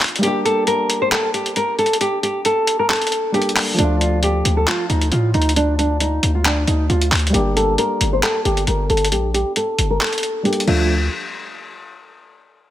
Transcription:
Already playing: grand piano F3 A3 F4 D5
0.01 clap, closed hi-hat, open hi-hat
0.08 closed hi-hat
0.16 grand piano G3, closed hi-hat
0.22 grand piano A#3 D4, nylon-string guitar G4, closed hi-hat
0.27 grand piano G4
0.45 nylon-string guitar A4, closed hi-hat
0.67 nylon-string guitar A#4, closed hi-hat
0.90 closed hi-hat
1.02 nylon-string guitar C5
1.12 nylon-string guitar A4, clap, closed hi-hat
1.34 nylon-string guitar G4, closed hi-hat
1.46 closed hi-hat
1.56 nylon-string guitar A#4, closed hi-hat
1.79 nylon-string guitar A4, closed hi-hat
1.86 closed hi-hat
1.93 closed hi-hat
2.01 nylon-string guitar G4, closed hi-hat
2.23 nylon-string guitar G4, closed hi-hat
2.45 nylon-string guitar A4, closed hi-hat
2.67 closed hi-hat
2.79 nylon-string guitar A#4
2.90 nylon-string guitar A4, clap, closed hi-hat
2.96 closed hi-hat
3.02 closed hi-hat
3.07 closed hi-hat
3.12 closed hi-hat
3.32 grand piano G3 A#3 D4, nylon-string guitar G4, closed hi-hat
3.36 grand piano A4
3.42 closed hi-hat
3.49 closed hi-hat
3.56 clap, open hi-hat
3.74 grand piano F3 A3
3.78 808-style bass D2, nylon-string guitar D4, grand piano D5, closed hi-hat
3.83 grand piano F4
4.01 nylon-string guitar F4, closed hi-hat
4.23 nylon-string guitar G4, closed hi-hat
4.45 808-style bass D2, closed hi-hat
4.57 nylon-string guitar A4
4.67 nylon-string guitar F4, clap, closed hi-hat
4.89 808-style bass D2, nylon-string guitar D#4, closed hi-hat
5.01 closed hi-hat
5.12 808-style bass A2, nylon-string guitar F4, closed hi-hat
5.34 808-style bass D2, nylon-string guitar D#4, closed hi-hat
5.42 closed hi-hat
5.49 closed hi-hat
5.56 nylon-string guitar D4, closed hi-hat
5.79 nylon-string guitar D4, closed hi-hat
6.00 nylon-string guitar D#4, closed hi-hat
6.23 808-style bass D2, closed hi-hat
6.35 nylon-string guitar F4
6.45 nylon-string guitar D4, clap, closed hi-hat
6.67 808-style bass D2, nylon-string guitar D#4, closed hi-hat
6.89 808-style bass D2, nylon-string guitar F4, closed hi-hat
7.02 closed hi-hat
7.12 808-style bass D2, clap, closed hi-hat, open hi-hat
7.19 closed hi-hat
7.27 grand piano G3, closed hi-hat
7.33 808-style bass G1, grand piano A#3 D4, nylon-string guitar G4, closed hi-hat
7.39 grand piano G4
7.56 nylon-string guitar A4, closed hi-hat
7.78 nylon-string guitar A#4, closed hi-hat
8.01 808-style bass G1, closed hi-hat
8.13 nylon-string guitar C5
8.23 nylon-string guitar A4, clap, closed hi-hat
8.45 808-style bass G1, nylon-string guitar G4, closed hi-hat
8.57 closed hi-hat
8.67 808-style bass G1, nylon-string guitar A#4, closed hi-hat
8.90 808-style bass G1, nylon-string guitar A4, closed hi-hat
8.97 closed hi-hat
9.05 closed hi-hat
9.12 808-style bass A#1, nylon-string guitar G4, closed hi-hat
9.34 nylon-string guitar G4, closed hi-hat
9.56 nylon-string guitar A4, closed hi-hat
9.79 808-style bass G1, closed hi-hat
9.90 nylon-string guitar A#4
10.01 nylon-string guitar A4, clap, closed hi-hat
10.07 closed hi-hat
10.13 closed hi-hat
10.18 closed hi-hat
10.23 closed hi-hat
10.43 grand piano G3 A#3 D4, nylon-string guitar G4, closed hi-hat
10.48 grand piano A4
10.53 closed hi-hat
10.60 closed hi-hat
10.67 808-style bass D2, grand piano F3 A3 D4 F4, nylon-string guitar F4, crash

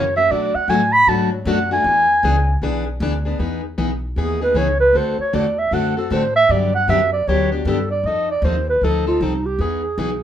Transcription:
Already playing: upright bass F#2, clarinet C#5
0.16 steel-string acoustic guitar A#3 C#4 F#4, clarinet E5
0.30 upright bass B2, steel-string acoustic guitar B2 F#3 A3 D4 F#4, clarinet D5
0.54 clarinet F#5, muted upright bass stroke
0.68 upright bass A2, steel-string acoustic guitar B2 F#3 A3 D4 F#4, clarinet G#5
0.93 clarinet B5
1.07 upright bass G#2, steel-string acoustic guitar B2 F#3 A3 D4 F#4, clarinet A5
1.33 clarinet C#5
1.45 upright bass F#2, steel-string acoustic guitar B2 F#3 A3 D4 F#4, clarinet F#5
1.71 steel-string acoustic guitar A3 D4 F#4, clarinet G#5
1.84 upright bass E2, steel-string acoustic guitar E3 B3 D4 G#4
2.23 upright bass C#2, steel-string acoustic guitar E3 B3 D4 G#4
2.62 upright bass B1, steel-string acoustic guitar E3 B3 D4 G#4
3.00 upright bass D2, steel-string acoustic guitar E3 B3 D4 G#4
3.25 steel-string acoustic guitar B3 D4 G#4
3.39 upright bass E2, steel-string acoustic guitar E3 B3 D#4 G#4
3.78 upright bass B1, steel-string acoustic guitar E3 B3 D#4 G#4
4.16 upright bass D#2, steel-string acoustic guitar E3 B3 D#4 G#4, clarinet G#4
4.41 steel-string acoustic guitar B3 D#4 G#4, clarinet B4
4.54 upright bass C#2, steel-string acoustic guitar E3 B3 D#4 G#4, clarinet C#5
4.80 clarinet B4
4.93 upright bass D2, steel-string acoustic guitar D3 A3 C4 F#4 A4, clarinet C5
5.18 clarinet C#5, muted upright bass stroke
5.33 upright bass E2, steel-string acoustic guitar D3 A3 C4 F#4 A4, clarinet D5
5.59 clarinet E5
5.71 upright bass F#2, steel-string acoustic guitar D3 A3 C4 F#4 A4, clarinet F#5
5.97 steel-string acoustic guitar C4 F#4 A4, clarinet A4
6.10 upright bass A2, steel-string acoustic guitar D3 A3 C4 F#4 A4, clarinet C5
6.36 clarinet E5
6.49 upright bass G2, steel-string acoustic guitar D3 F#3 B3 D4 G4, clarinet D5
6.75 clarinet F#5
6.88 upright bass F#2, steel-string acoustic guitar D3 F#3 B3 D4 G4, clarinet E5
7.13 clarinet D5
7.27 upright bass D2, steel-string acoustic guitar D3 F#3 B3 D4 G4, clarinet C#5
7.52 steel-string acoustic guitar B3 D4 G4, clarinet F#4
7.65 upright bass G2, steel-string acoustic guitar D3 F#3 B3 D4 G4, clarinet A4
7.91 clarinet D5
8.04 upright bass F2, steel-string acoustic guitar F3 C4 D#4, clarinet D#5
8.08 steel-string acoustic guitar A4
8.31 clarinet D5
8.42 upright bass D#2, steel-string acoustic guitar F3 C4 D#4 A4, clarinet C5
8.69 clarinet B4
8.81 upright bass D2, steel-string acoustic guitar F3 C4 D#4 A4, clarinet A4
9.07 steel-string acoustic guitar C4 D#4 A4, clarinet F4
9.21 upright bass C2, steel-string acoustic guitar F3 C4 D#4 A4, clarinet D#4
9.46 clarinet G4
9.59 upright bass E2, steel-string acoustic guitar E3 B3 D#4 G#4, clarinet G#4
9.98 upright bass B1, steel-string acoustic guitar E3 B3 D#4 G#4

